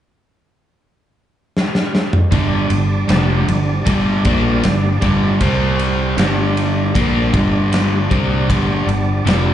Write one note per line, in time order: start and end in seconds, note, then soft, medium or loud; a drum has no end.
1.57 snare medium
1.75 snare medium
1.95 snare medium
2.13 mid tom loud
2.31 2.68 G1 medium
2.31 2.69 G2 medium
2.31 2.69 D3 medium
2.31 5.37 G3 medium
2.31 2.70 G3 medium
2.31 5.38 D4 medium
2.31 5.38 D5 medium
2.31 kick loud
2.31 ride medium
2.70 3.06 G1 medium
2.70 3.02 G2 medium
2.70 3.02 D3 medium
2.70 ride medium
3.08 3.46 F1 medium
3.08 3.46 F2 medium
3.08 3.47 C3 medium
3.08 3.47 F3 medium
3.08 snare loud
3.08 ride medium
3.48 3.84 G1 medium
3.48 3.79 G2 medium
3.48 3.79 D3 medium
3.48 ride medium
3.85 4.23 G1 medium
3.85 4.24 G2 medium
3.85 4.24 D3 medium
3.85 4.24 G3 loud
3.85 kick loud
3.85 ride medium
4.25 4.61 A#1 medium
4.25 4.63 A#2 medium
4.25 4.63 F3 medium
4.25 4.64 A#3 medium
4.25 kick loud
4.25 ride medium
4.63 5.00 G1 medium
4.63 4.95 G2 medium
4.63 4.95 D3 medium
4.63 snare loud
4.63 ride medium
5.02 5.38 G1 medium
5.02 5.40 G2 medium
5.02 5.40 D3 medium
5.02 5.40 G3 medium
5.02 kick loud
5.02 ride medium
5.39 6.14 C2 medium
5.39 6.17 C3 medium
5.39 6.17 G3 medium
5.39 6.17 C4 medium
5.39 6.17 C4 loud
5.39 6.17 C5 medium
5.39 kick loud
5.39 ride loud
5.79 ride medium
6.17 6.91 G1 medium
6.17 6.94 G2 medium
6.17 6.94 D3 medium
6.17 6.94 G3 loud
6.17 9.24 G3 medium
6.17 9.25 D4 medium
6.17 9.24 D5 medium
6.17 snare loud
6.17 ride medium
6.57 ride medium
6.94 7.31 A#1 medium
6.94 7.32 A#2 medium
6.94 7.33 F3 loud
6.94 7.33 A#3 loud
6.94 kick loud
6.94 ride medium
7.32 8.07 G1 medium
7.32 8.09 G2 medium
7.32 8.10 D3 loud
7.32 8.10 G3 medium
7.32 kick loud
7.32 ride medium
7.73 snare loud
7.73 ride medium
8.10 8.47 C2 medium
8.10 8.48 C3 medium
8.10 8.49 G3 medium
8.10 8.49 C4 loud
8.10 kick loud
8.10 ride medium
8.49 8.86 G1 medium
8.49 8.87 G2 medium
8.49 8.87 D3 medium
8.49 8.88 G3 loud
8.49 kick loud
8.49 ride medium
8.87 9.24 G1 medium
8.87 9.19 G2 medium
8.87 9.19 D3 medium
8.87 ride medium
9.25 9.54 F1 medium
9.25 9.54 F2 medium
9.25 9.54 C3 medium
9.25 9.54 F3 medium
9.25 9.54 G3 medium
9.25 9.54 D4 medium
9.25 9.54 D5 medium
9.25 snare loud
9.25 ride medium